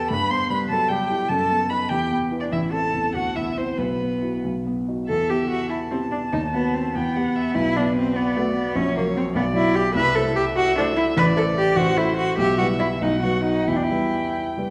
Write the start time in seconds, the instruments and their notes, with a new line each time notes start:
Already playing: grand piano E2 B3 G4 B4, cello A4, violin A5
0.11 grand piano G2, cello B4, violin B5
0.30 grand piano B3, cello C5, violin C6
0.50 grand piano G3, cello B4, violin B5
0.69 grand piano F#3, cello A4, violin A5
0.89 grand piano G3, cello G4, violin G5
1.10 grand piano E4
1.28 grand piano F#2, violin A5
1.32 cello A4
1.50 grand piano B3
1.70 grand piano D#4 B4, cello B4, violin B5
1.89 grand piano E2, cello G4, violin G5
2.11 grand piano B3
2.31 grand piano E4 B4
2.40 cello D4, violin D5
2.52 grand piano A1, cello E4, violin E5
2.72 grand piano C4, cello A4, violin A5
2.94 grand piano E2
3.14 grand piano D2, cello F#4, violin F#5
3.36 grand piano E2, cello E4, violin E5
3.57 cello C4, grand piano E4, violin C5
3.78 grand piano B1, cello B3, violin B4
4.00 grand piano B3
4.22 grand piano E4 F#4
4.44 grand piano B1
4.66 grand piano B3
4.88 grand piano D#4 F#4
5.08 grand piano E2, cello A4, violin E5
5.30 grand piano B3 E4 G4, cello G4
5.50 cello F#4
5.70 cello E4, violin A5
5.91 grand piano B3 E4 G4, cello C4
6.11 cello D4
6.33 grand piano D#2, cello D#4
6.54 cello B3, grand piano B3 F#4 B4
6.75 cello C4
6.94 grand piano E2, cello B3, violin G5
7.16 grand piano B3 G4 B4, violin F#5
7.35 violin E5
7.54 grand piano B1, cello E4, violin B4
7.76 grand piano B3 F#4 B4, cello D4
7.97 cello C4
8.16 cello B3, violin D5
8.36 cello A3, grand piano B3 F#4 B4
8.56 cello B3
8.76 grand piano A#1, cello C#4, violin C#5
8.97 grand piano F#3 F#4 C#5, cello A#3
9.17 cello C4
9.35 grand piano B1, cello B3, violin D5
9.54 grand piano F#3 F#4 D5, cello E4
9.75 cello G4
9.95 grand piano C2, cello B4, violin E5
10.15 grand piano A3 E4 C5, cello A4
10.36 cello G4
10.56 cello F#4, violin E5
10.77 grand piano A3 E4 C5, cello D4
10.96 cello E4
11.17 grand piano A1, cello B4, violin D5
11.36 grand piano A3 E4 C5, cello A4
11.58 cello G4
11.76 grand piano A1, cello F#4, violin C5
11.97 grand piano A3 F#4 C5, cello E4
12.17 cello F#4
12.38 grand piano B1, cello G4, violin E5
12.59 grand piano G3 E4 B4, cello F#4
12.79 cello E4
13.01 grand piano B1, cello D#4, violin F#5
13.23 grand piano F#3 F#4 B4, cello F#4
13.44 cello D#4
13.67 grand piano E2, cello E4, violin G5
13.76 cello D4
13.84 cello E4
13.91 grand piano G3 E4 B4
14.57 grand piano G3 E4 B4